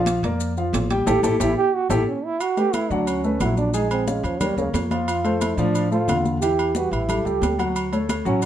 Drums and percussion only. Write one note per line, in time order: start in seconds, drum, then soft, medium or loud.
0.06 high conga medium
0.06 high timbale medium
0.06 low timbale medium
0.06 maracas medium
0.23 high conga soft
0.23 high timbale medium
0.23 maracas soft
0.40 high conga soft
0.40 maracas medium
0.57 high conga soft
0.57 maracas soft
0.73 high conga medium
0.73 high timbale medium
0.73 low timbale medium
0.73 maracas medium
0.90 high conga medium
0.90 high timbale medium
0.90 maracas soft
1.07 high conga medium
1.07 high timbale loud
1.07 maracas loud
1.23 high conga loud
1.23 high timbale medium
1.23 maracas loud
1.40 high conga medium
1.40 high timbale loud
1.40 maracas loud
1.90 high conga medium
1.90 high timbale loud
1.90 maracas loud
2.40 high conga soft
2.40 low agogo loud
2.40 maracas medium
2.57 high conga soft
2.57 low agogo medium
2.57 maracas soft
2.73 high conga medium
2.73 low timbale medium
2.73 low agogo loud
2.73 maracas medium
2.91 high conga soft
2.91 maracas soft
3.07 high conga soft
3.07 low agogo medium
3.07 maracas medium
3.24 high conga soft
3.24 maracas soft
3.40 high conga medium
3.40 low timbale medium
3.40 low agogo loud
3.40 maracas medium
3.57 high conga medium
3.57 maracas soft
3.74 high conga soft
3.74 low agogo medium
3.74 maracas medium
3.91 high conga soft
3.91 low agogo loud
3.91 maracas soft
4.08 high conga medium
4.08 low timbale medium
4.08 maracas medium
4.24 low agogo medium
4.24 maracas soft
4.41 high conga soft
4.41 low conga medium
4.41 low agogo loud
4.41 maracas medium
4.58 high conga soft
4.58 low conga medium
4.58 maracas soft
4.74 high conga medium
4.74 low timbale medium
4.74 low agogo medium
4.74 maracas medium
4.91 high conga medium
4.91 low agogo medium
4.91 maracas soft
5.08 low agogo loud
5.08 maracas medium
5.25 high conga soft
5.25 low agogo medium
5.25 maracas soft
5.41 high conga medium
5.41 low timbale medium
5.41 low agogo medium
5.41 maracas medium
5.58 maracas soft
5.75 high conga soft
5.75 low agogo medium
5.75 maracas medium
5.92 high conga soft
5.92 maracas soft
6.08 high conga medium
6.08 low timbale medium
6.08 low agogo loud
6.08 maracas medium
6.25 high conga medium
6.25 maracas soft
6.42 high conga soft
6.42 low agogo medium
6.42 maracas medium
6.58 high conga soft
6.58 low agogo loud
6.58 maracas soft
6.75 high conga medium
6.75 low timbale medium
6.75 maracas medium
6.93 low agogo medium
6.93 maracas soft
7.09 high conga soft
7.09 low conga medium
7.09 low agogo loud
7.09 maracas medium
7.25 high conga soft
7.25 maracas soft
7.42 high conga medium
7.42 low timbale medium
7.42 low agogo medium
7.42 maracas medium
7.59 high conga medium
7.59 low agogo medium
7.59 maracas soft
7.76 high conga soft
7.76 low agogo loud
7.76 maracas medium
7.93 high conga soft
7.93 low agogo medium
7.93 maracas soft
8.09 high conga medium
8.09 low timbale medium
8.09 low agogo loud
8.09 maracas medium
8.26 high conga soft
8.26 maracas soft
8.42 high conga soft
8.42 low agogo medium
8.42 maracas medium